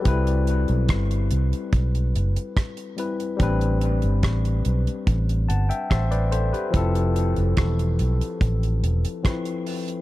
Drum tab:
HH |xxxxxxxxxxxxxxxx|xxxxxxxxxxxxxxxx|xxxxxxxxxxxxxxox|
SD |----r-------r---|----r-------r---|----r-------r---|
BD |o---o---o---o---|o---o---o---o---|o---o---o---o---|